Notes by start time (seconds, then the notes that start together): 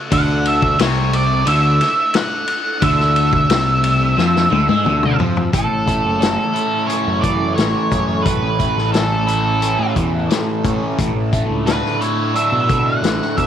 Already playing: A4
0.11 D2 D3 A3 D4 E4 F#5, kick, ride
0.46 E5, ride
0.62 kick
0.79 C2 C3 C#5, snare, ride
1.13 D5, ride
1.46 D2 D3 E5, ride
1.81 snare, ride
2.14 F#5, snare, ride
2.48 ride
2.82 D2 D3 E5, kick, ride
3.00 snare
3.16 ride
3.33 kick
3.50 C2 C3, snare, ride
3.84 ride
4.17 F2 F3, snare
4.36 snare
4.51 D2 D3, high tom
4.69 G#2 G#3, high tom
4.85 D2 D3, mid tom
5.03 mid tom
5.19 F2 F3, floor tom
5.37 floor tom
5.52 A1 A2 C#3 A3 E4 A4, kick, closed hi-hat
5.71 A1
5.86 A3, kick, closed hi-hat
6.05 F#1
6.20 C#4, snare, closed hi-hat
6.53 E4, closed hi-hat
6.87 C#4 C#5, closed hi-hat
7.07 F#2
7.21 E3 D5, kick, closed hi-hat
7.55 A1 A3 C#5, closed hi-hat
7.59 snare
7.91 F#2 C#4, kick, closed hi-hat
8.22 A2 B4, kick, closed hi-hat
8.42 A1
8.59 A3, kick, closed hi-hat
8.76 A1, snare
8.92 C#4 A4, snare, closed hi-hat
9.27 E4, closed hi-hat
9.62 C#4, closed hi-hat
9.79 A2
9.96 E2 E3, kick, closed hi-hat
10.30 A3, snare, closed hi-hat
10.64 A2 C#4, kick, closed hi-hat
10.99 A1 A2 D4 E4, kick, closed hi-hat
11.15 A1
11.33 A3, kick, closed hi-hat
11.49 C#2
11.66 D4 B4, snare, closed hi-hat
11.86 snare
12.01 E4 C#5, closed hi-hat
12.34 D4 E5, closed hi-hat
12.52 B2
12.68 D3, kick, closed hi-hat
12.86 F#5
13.02 A1 A3, snare, closed hi-hat
13.22 snare
13.37 B2 D4 E5, kick, closed hi-hat